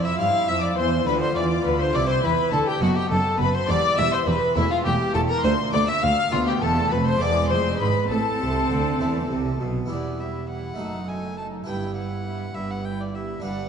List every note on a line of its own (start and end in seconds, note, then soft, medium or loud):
0.00 0.19 F2 medium
0.00 0.16 F3 medium
0.00 0.19 F3 medium
0.00 1.06 E4 medium
0.05 0.19 E5 medium
0.05 0.18 E5 medium
0.05 0.20 E6 loud
0.19 0.27 G2 medium
0.19 0.45 G3 medium
0.19 0.28 G3 medium
0.19 0.82 C4 medium
0.19 0.82 E4 medium
0.19 0.50 F5 loud
0.19 0.48 F5 loud
0.19 0.28 F6 loud
0.48 0.77 F2 medium
0.48 0.74 F3 medium
0.48 0.77 F3 medium
0.48 0.63 E5 loud
0.48 0.62 E5 loud
0.48 0.63 E6 loud
0.62 0.68 D5 medium
0.62 0.77 D5 medium
0.62 0.78 D6 loud
0.77 1.06 E2 medium
0.77 1.04 E3 medium
0.77 1.06 E3 medium
0.77 1.06 C5 loud
0.77 1.08 C5 medium
0.77 1.06 C6 loud
1.06 1.35 D2 medium
1.06 1.33 D3 medium
1.06 1.35 D3 medium
1.06 1.90 B3 medium
1.06 1.92 F4 medium
1.06 1.91 F4 medium
1.06 1.21 B4 medium
1.06 1.21 B4 loud
1.06 1.13 B5 loud
1.21 1.27 C5 medium
1.21 1.35 C5 loud
1.21 1.36 C6 medium
1.35 1.65 E2 medium
1.35 1.62 E3 medium
1.35 1.65 E3 medium
1.35 1.44 D5 loud
1.35 1.65 D5 medium
1.35 1.65 D6 loud
1.64 1.94 D2 medium
1.64 1.91 D3 medium
1.64 1.94 D3 medium
1.64 1.79 B4 medium
1.64 1.80 B4 medium
1.64 1.79 B5 loud
1.80 1.96 C5 loud
1.80 1.86 C5 medium
1.80 1.95 C6 loud
1.94 2.24 C2 medium
1.94 2.21 C3 medium
1.94 2.23 C3 medium
1.94 2.78 C4 medium
1.94 2.81 E4 medium
1.94 2.78 E4 medium
1.94 2.00 D5 loud
1.94 2.08 D5 loud
1.94 2.09 D6 loud
2.08 2.23 C5 medium
2.08 2.23 C5 loud
2.08 2.24 C6 loud
2.23 2.32 E2 medium
2.23 2.49 E3 medium
2.23 2.31 E3 medium
2.23 2.52 B4 loud
2.23 2.52 B4 medium
2.23 2.52 B5 loud
2.52 2.61 D2 medium
2.52 2.60 D3 medium
2.52 2.78 D3 medium
2.52 2.67 A4 loud
2.52 2.58 A4 medium
2.52 2.67 A5 loud
2.66 2.81 G4 medium
2.66 2.83 G4 medium
2.66 2.82 G5 loud
2.81 2.89 F#1 medium
2.81 3.07 F#2 medium
2.81 2.89 F#2 loud
2.81 3.65 B3 medium
2.81 2.89 B3 medium
2.81 3.65 D#4 medium
2.81 2.95 F#4 loud
2.81 2.98 F#4 medium
2.81 2.88 F#5 loud
2.95 3.10 G4 medium
2.95 3.10 G4 loud
2.95 3.11 G5 loud
3.09 3.19 F#1 medium
3.09 3.36 F#2 medium
3.09 3.18 F#2 medium
3.09 3.18 B3 medium
3.09 3.38 A4 medium
3.09 3.39 A4 loud
3.09 3.39 A5 loud
3.39 3.48 F#1 medium
3.39 3.47 F#2 medium
3.39 3.66 F#2 medium
3.39 3.47 B3 medium
3.39 3.54 B4 medium
3.39 3.56 B4 loud
3.39 3.54 B5 loud
3.54 3.69 C5 loud
3.54 3.71 C5 loud
3.54 3.69 C6 loud
3.68 3.77 E1 medium
3.68 3.95 E2 medium
3.68 3.77 E2 loud
3.68 3.77 G3 medium
3.68 4.52 B3 medium
3.68 4.53 E4 medium
3.68 3.98 D5 loud
3.68 3.99 D5 loud
3.68 3.98 D6 loud
3.97 4.06 E1 loud
3.97 4.24 E2 medium
3.97 4.06 E2 medium
3.97 4.06 G3 medium
3.97 4.12 E5 loud
3.97 4.12 E6 loud
4.12 4.27 C5 loud
4.12 4.19 C5 loud
4.12 4.28 C6 loud
4.27 4.36 E1 medium
4.27 4.53 E2 medium
4.27 4.35 E2 loud
4.27 4.35 G3 medium
4.27 4.55 B4 loud
4.27 4.56 B4 medium
4.27 4.56 B5 loud
4.56 4.65 E1 loud
4.56 4.82 E2 medium
4.56 4.64 E2 loud
4.56 5.40 A3 medium
4.56 4.64 A3 medium
4.56 5.40 C#4 medium
4.56 4.62 E4 loud
4.56 4.72 E4 loud
4.56 5.40 E4 medium
4.56 4.71 E5 loud
4.71 4.85 F4 loud
4.71 4.84 F4 loud
4.71 4.77 F5 loud
4.85 4.94 E1 loud
4.85 4.93 E2 loud
4.85 5.12 E2 medium
4.85 4.93 A3 medium
4.85 5.14 G4 loud
4.85 5.15 G4 loud
4.85 4.94 G5 loud
5.14 5.23 E1 medium
5.14 5.41 E2 medium
5.14 5.23 E2 medium
5.14 5.23 A3 medium
5.14 5.20 A4 medium
5.14 5.29 A4 loud
5.14 5.21 A5 loud
5.29 5.43 A#4 loud
5.29 5.44 A#4 loud
5.29 5.44 A#5 loud
5.44 5.70 D2 medium
5.44 5.52 D2 loud
5.44 5.52 D2 medium
5.44 6.28 A3 medium
5.44 5.52 A3 medium
5.44 6.28 D4 medium
5.44 6.28 F4 medium
5.44 5.52 C5 loud
5.44 5.73 C6 loud
5.73 5.99 D2 medium
5.73 5.81 D2 loud
5.73 5.81 A3 medium
5.73 5.90 D5 loud
5.73 5.79 D5 loud
5.73 5.88 D6 loud
5.88 6.05 E5 loud
5.88 6.02 E5 loud
5.88 6.03 E6 loud
6.02 6.29 D2 medium
6.02 6.10 D2 loud
6.02 6.11 D2 medium
6.02 6.10 A3 medium
6.02 6.31 F5 loud
6.02 6.34 F5 loud
6.02 6.32 F6 loud
6.31 6.59 D2 medium
6.31 6.58 D2 medium
6.31 6.60 D2 loud
6.31 6.73 B3 medium
6.31 7.17 B3 medium
6.31 7.17 D4 medium
6.31 6.38 F4 loud
6.31 6.47 F4 loud
6.31 7.17 F4 medium
6.31 6.47 F5 loud
6.47 6.61 G4 medium
6.47 6.53 G4 loud
6.47 6.62 G5 loud
6.61 6.90 E1 medium
6.61 6.88 E2 medium
6.61 6.91 E2 loud
6.61 6.70 A4 medium
6.61 6.93 A4 loud
6.61 6.91 A5 loud
6.76 7.21 A3 medium
6.91 7.20 F1 medium
6.91 7.18 F2 medium
6.91 7.20 F2 medium
6.91 6.97 B4 loud
6.91 7.06 B4 medium
6.91 7.06 B5 loud
7.06 7.20 C5 loud
7.06 7.23 C5 loud
7.06 7.21 C6 loud
7.20 7.50 E1 medium
7.20 7.50 E2 loud
7.20 7.48 E2 medium
7.20 8.10 G#3 medium
7.20 7.48 G#3 medium
7.20 7.48 B3 medium
7.20 8.07 E4 medium
7.20 7.50 D5 loud
7.20 7.52 D5 loud
7.20 7.51 D6 loud
7.50 7.80 F1 medium
7.50 7.80 F2 medium
7.50 7.77 F2 medium
7.50 7.79 C5 medium
7.50 7.82 C5 loud
7.50 7.80 C6 loud
7.80 7.88 G#1 medium
7.80 7.88 G#2 medium
7.80 8.07 G#2 medium
7.80 8.09 B4 loud
7.80 8.10 B4 medium
7.80 8.09 B5 loud
8.10 8.18 A1 medium
8.10 8.18 A2 medium
8.10 8.37 A2 medium
8.10 9.70 C4 medium
8.10 9.60 A4 loud
8.10 9.58 A4 medium
8.10 9.57 A5 loud
8.40 8.70 C2 medium
8.40 8.70 C3 medium
8.40 8.67 C3 medium
8.70 9.00 D2 medium
8.70 9.00 D3 medium
8.70 8.97 D3 medium
9.00 9.30 E2 medium
9.00 9.29 E3 medium
9.00 9.28 E3 medium
9.00 9.65 A3 medium
9.00 9.65 C4 medium
9.00 9.66 E4 medium
9.30 9.60 C2 medium
9.30 9.60 C3 medium
9.30 9.57 C3 medium
9.60 9.90 B1 medium
9.60 9.89 B2 medium
9.60 9.87 B2 medium
9.86 10.74 B3 soft
9.86 10.74 E4 soft
9.86 10.18 E4 soft
9.86 10.75 G4 soft
9.86 10.19 B4 soft
9.90 10.68 E1 soft
9.90 10.66 E2 soft
9.90 10.68 E2 medium
9.90 10.19 G3 soft
9.90 10.21 D5 medium
10.19 10.48 G3 soft
10.19 10.47 E4 soft
10.19 10.48 B4 soft
10.19 10.49 E5 soft
10.49 10.78 G3 soft
10.49 10.78 E4 soft
10.49 10.78 B4 soft
10.49 11.09 F#5 medium
10.74 11.62 A3 soft
10.74 11.63 D#4 soft
10.74 11.63 A4 soft
10.78 11.56 F#1 soft
10.78 11.54 F#2 soft
10.78 11.56 F#2 medium
10.78 11.06 A3 soft
10.78 11.06 D#4 soft
10.78 11.07 A4 soft
11.07 11.36 A3 soft
11.07 11.36 D#4 soft
11.07 11.36 A4 soft
11.07 11.37 G#5 medium
11.37 11.66 A3 soft
11.37 11.66 D#4 soft
11.37 11.66 A4 soft
11.37 11.46 A5 medium
11.64 12.44 G1 soft
11.64 12.42 G2 soft
11.64 12.44 G2 soft
11.64 11.95 G3 soft
11.64 13.37 E4 soft
11.64 11.95 E4 soft
11.64 13.38 B4 soft
11.64 11.95 B4 soft
11.64 11.96 G5 medium
11.96 12.24 G3 soft
11.96 12.24 E4 soft
11.96 12.24 B4 soft
11.96 12.56 F#5 medium
12.25 12.54 G3 soft
12.25 12.54 E4 soft
12.25 12.54 B4 soft
12.55 13.32 G1 soft
12.55 13.32 G2 medium
12.55 13.30 G2 soft
12.55 12.83 G3 soft
12.55 12.83 E4 soft
12.55 12.84 B4 soft
12.55 12.72 E5 medium
12.71 12.86 F#5 medium
12.84 13.12 G3 soft
12.84 13.12 E4 soft
12.84 13.13 B4 soft
12.84 13.02 G5 medium
13.00 13.16 D5 medium
13.13 13.41 G3 soft
13.13 13.42 E4 soft
13.13 13.42 B4 soft
13.13 13.43 E5 medium
13.40 13.69 G1 medium
13.40 13.69 G2 medium
13.40 13.69 G2 soft
13.40 13.69 G3 soft
13.40 13.69 D4 soft
13.40 13.69 B4 soft
13.40 13.69 B4 medium
13.40 13.69 F#5 medium